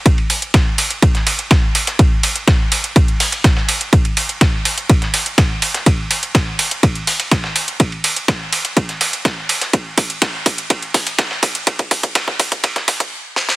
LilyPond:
\new DrumStaff \with { instrumentName = "Drums" } \drummode { \time 4/4 \tempo 4 = 124 <hh bd cymr>16 cymr16 <hho cymr>16 hh16 <hh bd cymr sn>8 <hho cymr>16 hh16 <hh bd cymr>16 <hh sn>16 <hho cymr sn>16 hh16 <hh bd cymr sn>8 <hho cymr>16 <hh sn>16 | <hh bd cymr>8 <hho cymr>16 hh16 <hh bd cymr sn>8 <hho cymr>16 hh16 <hh bd cymr>16 hh16 <hho sn>16 <hh cymr>16 <hh bd cymr sn>16 sn16 <hho cymr>16 hh16 | <hh bd cymr>16 <hh cymr>16 <hho cymr>16 hh16 <hh bd cymr sn>8 <hho cymr>16 hh16 <hh bd cymr>16 <hh sn>16 <hho cymr sn>16 hh16 <hh bd cymr sn>8 <hho cymr>16 <hh sn>16 | <hh bd cymr>8 <hho cymr>16 hh16 <hh bd cymr sn>8 <hho cymr>16 hh16 <hh bd cymr>16 hh16 <hho sn>16 <hh cymr>16 <hh bd cymr sn>16 sn16 <hho cymr>16 hh16 |
<hh bd cymr>16 cymr16 <hho cymr>16 hh16 <hh bd cymr sn>8 <hho cymr>16 hh16 <hh bd cymr>16 <hh sn>16 <hho cymr sn>16 hh16 <hh bd cymr sn>8 <hho cymr>16 <hh sn>16 | <hh bd cymr>8 <hho bd cymr>16 hh16 <hh bd cymr sn>8 <hho bd cymr>16 hh16 <hh bd cymr>16 hh16 <hho bd sn>16 <hh cymr>16 <hh bd cymr sn>16 sn16 <hho bd cymr>16 hh16 | <hh bd cymr>16 <hh bd cymr>16 <hho bd cymr>16 <hh bd>16 <hh bd cymr sn>16 bd16 <hho bd cymr>16 <hh bd>16 <hh bd cymr>16 <hh bd sn>16 <hho bd cymr sn>16 <hh bd>16 r8 sn16 sn16 | }